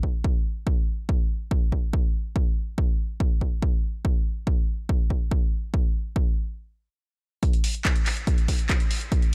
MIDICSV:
0, 0, Header, 1, 2, 480
1, 0, Start_track
1, 0, Tempo, 422535
1, 758, Time_signature, 4, 2, 24, 8
1, 10616, End_track
2, 0, Start_track
2, 0, Title_t, "Drums"
2, 37, Note_on_c, 9, 36, 60
2, 151, Note_off_c, 9, 36, 0
2, 277, Note_on_c, 9, 36, 117
2, 391, Note_off_c, 9, 36, 0
2, 757, Note_on_c, 9, 36, 113
2, 871, Note_off_c, 9, 36, 0
2, 1237, Note_on_c, 9, 36, 112
2, 1351, Note_off_c, 9, 36, 0
2, 1717, Note_on_c, 9, 36, 114
2, 1831, Note_off_c, 9, 36, 0
2, 1957, Note_on_c, 9, 36, 60
2, 2071, Note_off_c, 9, 36, 0
2, 2197, Note_on_c, 9, 36, 114
2, 2311, Note_off_c, 9, 36, 0
2, 2677, Note_on_c, 9, 36, 111
2, 2791, Note_off_c, 9, 36, 0
2, 3157, Note_on_c, 9, 36, 107
2, 3271, Note_off_c, 9, 36, 0
2, 3637, Note_on_c, 9, 36, 112
2, 3751, Note_off_c, 9, 36, 0
2, 3877, Note_on_c, 9, 36, 58
2, 3991, Note_off_c, 9, 36, 0
2, 4117, Note_on_c, 9, 36, 112
2, 4231, Note_off_c, 9, 36, 0
2, 4597, Note_on_c, 9, 36, 110
2, 4711, Note_off_c, 9, 36, 0
2, 5077, Note_on_c, 9, 36, 111
2, 5191, Note_off_c, 9, 36, 0
2, 5558, Note_on_c, 9, 36, 110
2, 5671, Note_off_c, 9, 36, 0
2, 5797, Note_on_c, 9, 36, 58
2, 5911, Note_off_c, 9, 36, 0
2, 6037, Note_on_c, 9, 36, 110
2, 6151, Note_off_c, 9, 36, 0
2, 6517, Note_on_c, 9, 36, 111
2, 6630, Note_off_c, 9, 36, 0
2, 6997, Note_on_c, 9, 36, 110
2, 7110, Note_off_c, 9, 36, 0
2, 8437, Note_on_c, 9, 36, 122
2, 8437, Note_on_c, 9, 42, 86
2, 8551, Note_off_c, 9, 36, 0
2, 8551, Note_off_c, 9, 42, 0
2, 8559, Note_on_c, 9, 42, 54
2, 8672, Note_off_c, 9, 42, 0
2, 8677, Note_on_c, 9, 46, 110
2, 8791, Note_off_c, 9, 46, 0
2, 8799, Note_on_c, 9, 42, 57
2, 8912, Note_off_c, 9, 42, 0
2, 8917, Note_on_c, 9, 36, 122
2, 8917, Note_on_c, 9, 39, 125
2, 8917, Note_on_c, 9, 42, 83
2, 9031, Note_off_c, 9, 36, 0
2, 9031, Note_off_c, 9, 39, 0
2, 9031, Note_off_c, 9, 42, 0
2, 9038, Note_on_c, 9, 42, 58
2, 9152, Note_off_c, 9, 42, 0
2, 9157, Note_on_c, 9, 39, 66
2, 9157, Note_on_c, 9, 46, 106
2, 9271, Note_off_c, 9, 39, 0
2, 9271, Note_off_c, 9, 46, 0
2, 9279, Note_on_c, 9, 42, 56
2, 9392, Note_off_c, 9, 42, 0
2, 9397, Note_on_c, 9, 36, 121
2, 9397, Note_on_c, 9, 42, 83
2, 9511, Note_off_c, 9, 36, 0
2, 9511, Note_off_c, 9, 42, 0
2, 9518, Note_on_c, 9, 42, 57
2, 9632, Note_off_c, 9, 42, 0
2, 9637, Note_on_c, 9, 36, 63
2, 9638, Note_on_c, 9, 46, 114
2, 9751, Note_off_c, 9, 36, 0
2, 9751, Note_off_c, 9, 46, 0
2, 9758, Note_on_c, 9, 42, 56
2, 9872, Note_off_c, 9, 42, 0
2, 9877, Note_on_c, 9, 36, 117
2, 9877, Note_on_c, 9, 39, 127
2, 9877, Note_on_c, 9, 42, 86
2, 9991, Note_off_c, 9, 36, 0
2, 9991, Note_off_c, 9, 39, 0
2, 9991, Note_off_c, 9, 42, 0
2, 9998, Note_on_c, 9, 42, 55
2, 10112, Note_off_c, 9, 42, 0
2, 10118, Note_on_c, 9, 46, 107
2, 10231, Note_off_c, 9, 46, 0
2, 10238, Note_on_c, 9, 42, 57
2, 10352, Note_off_c, 9, 42, 0
2, 10357, Note_on_c, 9, 42, 86
2, 10358, Note_on_c, 9, 36, 124
2, 10471, Note_off_c, 9, 36, 0
2, 10471, Note_off_c, 9, 42, 0
2, 10478, Note_on_c, 9, 42, 55
2, 10592, Note_off_c, 9, 42, 0
2, 10616, End_track
0, 0, End_of_file